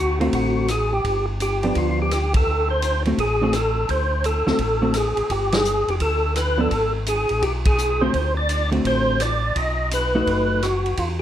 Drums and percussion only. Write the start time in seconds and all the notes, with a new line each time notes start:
0.21 ride
0.33 kick, ride
0.68 cross-stick, hi-hat pedal, ride
1.04 kick, ride
1.40 hi-hat pedal, ride
1.63 ride
1.75 kick, ride
2.11 cross-stick, hi-hat pedal, ride
2.34 kick, ride
2.82 hi-hat pedal, ride
3.05 ride
3.18 kick, ride
3.53 cross-stick, hi-hat pedal, ride
3.89 kick, ride
4.24 hi-hat pedal, ride
4.47 snare
4.59 kick, ride
4.94 cross-stick, hi-hat pedal, ride
5.17 ride
5.30 kick, ride
5.52 snare, ride
5.65 hi-hat pedal
5.88 ride
6.00 kick, ride
6.36 cross-stick, hi-hat pedal, ride
6.71 kick, ride
7.06 hi-hat pedal, ride
7.29 ride
7.42 kick, ride
7.65 kick, ride
7.78 hi-hat pedal
8.14 kick, ride
8.49 hi-hat pedal, ride
8.72 ride
8.85 kick, ride
9.20 cross-stick, hi-hat pedal, ride
9.56 kick, ride
9.91 hi-hat pedal, ride
10.27 kick, ride
10.63 cross-stick, hi-hat pedal, ride
10.86 ride
10.97 kick, ride